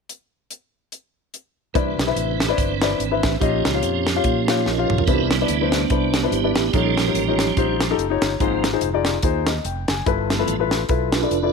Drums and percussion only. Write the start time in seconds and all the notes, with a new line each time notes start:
0.09 closed hi-hat
0.51 closed hi-hat
0.92 closed hi-hat
1.34 closed hi-hat
1.75 kick, closed hi-hat
1.99 snare, closed hi-hat
2.17 closed hi-hat
2.40 snare, closed hi-hat
2.58 kick, closed hi-hat
2.82 snare, closed hi-hat
3.00 closed hi-hat
3.23 kick, snare, closed hi-hat
3.41 kick, closed hi-hat
3.65 snare, closed hi-hat
3.83 closed hi-hat
4.07 snare, closed hi-hat
4.24 kick, closed hi-hat
4.48 snare, closed hi-hat
4.66 snare
4.90 mid tom
4.98 floor tom
5.07 kick, closed hi-hat
5.31 snare, closed hi-hat
5.48 closed hi-hat
5.72 snare, closed hi-hat
5.90 kick, closed hi-hat
6.14 snare, closed hi-hat
6.32 closed hi-hat
6.55 snare, closed hi-hat
6.73 kick, closed hi-hat
6.97 snare, closed hi-hat
7.15 closed hi-hat
7.39 snare, closed hi-hat
7.57 kick, closed hi-hat
7.80 snare, closed hi-hat
7.99 closed hi-hat
8.22 snare, closed hi-hat
8.40 kick, closed hi-hat
8.64 snare, closed hi-hat
8.81 closed hi-hat
9.05 snare, closed hi-hat
9.22 kick, closed hi-hat
9.47 snare, closed hi-hat
9.65 closed hi-hat
9.88 snare, closed hi-hat
10.06 kick, closed hi-hat
10.30 snare, closed hi-hat
10.48 closed hi-hat
10.71 snare, closed hi-hat
10.89 kick, closed hi-hat
11.12 snare, closed hi-hat
11.31 closed hi-hat